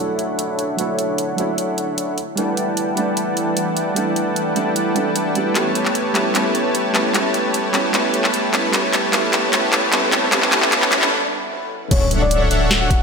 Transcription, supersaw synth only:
0.00 0.76 D4 medium
0.00 0.76 A4 medium
0.00 0.76 C#5 medium
0.00 0.76 E5 medium
0.00 0.76 F#5 loud
0.78 1.36 D4 medium
0.78 1.36 A4 medium
0.78 1.36 C#5 medium
0.78 1.36 E5 medium
0.78 1.36 F#5 medium
1.38 2.17 D4 medium
1.38 2.17 A4 medium
1.38 2.17 C#5 medium
1.38 2.17 E5 medium
1.38 2.17 F#5 loud
2.37 2.95 E4 medium
2.37 2.95 B4 medium
2.37 2.95 D5 medium
2.37 2.95 F#5 medium
2.37 2.95 G5 medium
2.37 2.95 A5 loud
2.97 3.94 E4 loud
2.97 3.94 B4 medium
2.97 3.94 D5 medium
2.97 3.94 F#5 medium
2.97 3.94 G5 medium
2.97 3.94 A5 loud
3.96 4.54 E4 medium
3.96 4.54 B4 medium
3.96 4.54 D5 medium
3.96 4.54 F#5 medium
3.96 4.54 G5 medium
3.96 4.54 A5 medium
4.56 5.53 E4 medium
4.56 5.53 B4 medium
4.56 5.53 D5 medium
4.56 5.53 F#5 medium
4.56 5.53 G5 medium
4.56 5.53 A5 loud
5.55 6.13 A3 medium
5.55 6.13 G4 medium
5.55 6.13 B4 medium
5.55 6.13 C#5 medium
5.55 6.13 A5 loud
6.15 6.33 A3 medium
6.15 6.33 G4 medium
6.15 6.33 B4 medium
6.15 6.33 C#5 medium
6.15 6.33 A5 loud
6.35 6.92 A3 medium
6.35 6.92 G4 medium
6.35 6.92 B4 medium
6.35 6.92 C#5 medium
6.35 6.92 A5 medium
6.94 7.13 A3 medium
6.94 7.13 G4 medium
6.94 7.13 B4 medium
6.94 7.13 C#5 medium
6.94 7.13 A5 loud
7.14 7.72 A3 medium
7.14 7.72 G4 medium
7.14 7.72 B4 medium
7.14 7.72 C#5 medium
7.14 7.72 A5 loud
7.74 7.92 A3 medium
7.74 7.92 G4 medium
7.74 7.92 B4 medium
7.74 7.92 C#5 medium
7.74 7.92 A5 loud
7.94 8.51 A3 medium
7.94 8.51 G4 medium
7.94 8.51 B4 medium
7.94 8.51 C#5 medium
7.94 8.51 A5 medium
8.53 8.72 A3 medium
8.53 8.72 G4 medium
8.53 8.72 B4 medium
8.53 8.72 C#5 medium
8.53 8.72 A5 loud
8.73 9.12 A3 medium
8.73 9.12 G4 medium
8.73 9.12 B4 medium
8.73 9.12 C#5 medium
8.73 9.12 A5 loud
9.13 9.51 A3 medium
9.13 9.51 G4 medium
9.13 9.51 B4 medium
9.13 9.51 C#5 medium
9.13 9.51 A5 loud
9.53 9.91 A3 medium
9.53 9.91 G4 medium
9.53 9.91 B4 medium
9.53 9.91 C#5 medium
9.53 9.91 A5 loud
9.92 10.31 A3 medium
9.92 10.31 G4 medium
9.92 10.31 B4 medium
9.92 10.31 C#5 medium
9.92 10.31 A5 loud
10.32 10.51 A3 medium
10.32 10.51 G4 medium
10.32 10.51 B4 medium
10.32 10.51 C#5 medium
10.32 10.51 A5 loud
10.52 10.70 A3 medium
10.52 10.70 G4 medium
10.52 10.70 B4 medium
10.52 10.70 C#5 medium
10.52 10.70 A5 loud
10.72 10.90 A3 loud
10.72 10.90 G4 medium
10.72 10.90 B4 medium
10.72 10.90 C#5 medium
10.72 10.90 A5 loud
10.92 11.10 A3 loud
10.92 11.10 G4 medium
10.92 11.10 B4 medium
10.92 11.10 C#5 medium
10.92 11.10 A5 loud
11.91 12.49 D4 medium
11.91 12.49 A4 medium
11.91 12.49 C#5 medium
11.91 12.49 E5 medium
11.91 12.49 F#5 loud
12.51 13.03 D4 loud
12.51 13.03 A4 medium
12.51 13.03 C#5 medium
12.51 13.03 E5 medium
12.51 13.03 F#5 loud

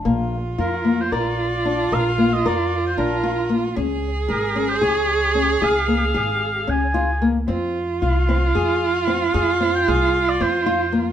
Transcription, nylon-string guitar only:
0.05 0.35 A#3 medium
0.58 0.74 F4 medium
0.85 1.00 A#3 medium
1.12 1.42 A#4 medium
1.65 1.80 D4 medium
1.92 2.07 A#4 medium
2.18 2.33 A#3 medium
2.46 2.75 A#4 medium
2.98 3.13 D4 medium
3.23 3.38 F4 medium
3.49 3.64 A#3 medium
3.76 4.06 C#4 medium
4.28 4.44 G#4 medium
4.55 4.70 C#4 medium
4.81 5.12 G#4 medium
5.35 5.50 C#4 medium
5.62 5.77 G#4 medium
5.88 6.03 A#3 medium
6.14 6.45 G#4 medium
6.67 6.83 C#4 medium
6.94 7.10 F4 medium
7.22 7.37 A#3 medium
7.48 7.78 C4 medium
8.02 8.17 F4 medium
8.29 8.44 C4 medium
8.55 8.85 G#4 medium
9.07 9.23 C4 medium
9.34 9.49 G#4 medium
9.60 9.76 C4 medium
9.88 10.18 G#4 medium
10.41 10.55 C4 medium
10.66 10.81 F4 medium
10.93 11.07 A#3 medium

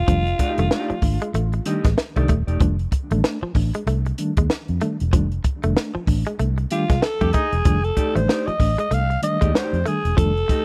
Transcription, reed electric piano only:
0.08 0.22 D#3 loud
0.08 0.22 G3 medium
0.08 0.22 A3 medium
0.08 0.22 D4 loud
0.58 0.68 D#3 medium
0.58 0.68 G3 medium
0.58 0.68 A3 medium
0.58 0.68 D4 medium
0.72 0.85 A3 medium
0.72 0.85 D4 medium
1.03 1.16 A3 medium
1.03 1.17 D4 medium
1.35 1.42 A3 soft
1.35 1.42 D4 soft
1.66 1.79 D#3 medium
1.66 1.79 G3 medium
1.66 1.80 A3 medium
1.66 1.80 D4 medium
2.17 2.26 D#3 medium
2.17 2.25 G3 medium
2.17 2.26 A3 medium
2.17 2.26 D4 medium
2.61 2.74 D#3 medium
2.61 2.74 G3 medium
2.61 2.74 A3 medium
2.61 2.75 D4 loud
3.11 3.20 D#3 medium
3.11 3.20 G3 medium
3.11 3.20 A3 medium
3.11 3.20 D4 medium
3.24 3.37 A3 medium
3.55 3.69 A3 medium
3.55 3.69 D4 medium
3.87 3.95 A3 soft
3.87 3.94 D4 soft
4.18 4.32 D#3 medium
4.18 4.32 G3 medium
4.18 4.32 A3 medium
4.18 4.32 D4 medium
4.82 4.95 D#3 medium
4.82 4.95 G3 medium
4.82 4.95 A3 medium
4.82 4.95 D4 medium
5.01 5.06 A3 soft
5.01 5.06 D4 soft
5.13 5.27 D#3 medium
5.13 5.27 G3 medium
5.13 5.27 A3 medium
5.13 5.27 D4 medium
5.64 5.73 D#3 medium
5.64 5.73 G3 medium
5.64 5.73 A3 medium
5.64 5.73 D4 medium
5.76 5.90 A3 medium
5.76 5.90 D4 medium
6.08 6.21 A3 medium
6.08 6.22 D4 medium
6.40 6.47 A3 soft
6.40 6.47 D4 soft
6.71 6.84 D#3 medium
6.71 6.85 G3 medium
6.71 6.85 A3 medium
6.71 6.85 D4 medium
7.21 7.30 D#3 medium
7.21 7.30 G3 medium
7.21 7.30 A3 medium
7.21 7.30 D4 medium
7.34 7.42 A3 soft
7.34 7.42 D4 soft
7.65 7.79 D#3 medium
7.65 7.79 G3 medium
7.65 7.79 A3 medium
7.65 7.79 D4 loud
8.15 8.25 D#3 medium
8.15 8.25 G3 medium
8.15 8.25 A3 medium
8.15 8.25 D4 medium
8.28 8.42 A3 medium
8.28 8.42 D4 medium
8.60 8.73 A3 medium
8.60 8.74 D4 medium
8.91 8.99 A3 soft
8.91 8.99 D4 soft
9.22 9.36 D#3 medium
9.22 9.37 G3 medium
9.22 9.37 A3 medium
9.22 9.37 D4 medium
9.86 10.00 D#3 medium
9.86 10.00 G3 medium
9.86 10.00 A3 medium
9.86 10.00 D4 medium
10.06 10.11 A3 soft
10.06 10.11 D4 soft
10.17 10.31 D#3 medium
10.17 10.31 G3 medium
10.17 10.31 A3 medium
10.17 10.32 D4 medium

